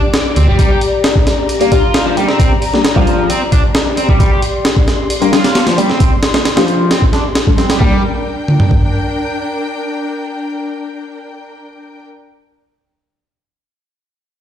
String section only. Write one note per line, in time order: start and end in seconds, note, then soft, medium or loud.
0.00 7.77 G4 medium
0.00 7.77 D5 medium
0.00 0.58 D6 medium
0.59 4.19 A#5 medium
4.19 7.79 C6 medium
7.82 12.04 D4 medium
7.82 12.04 A#4 medium
7.82 12.04 G5 medium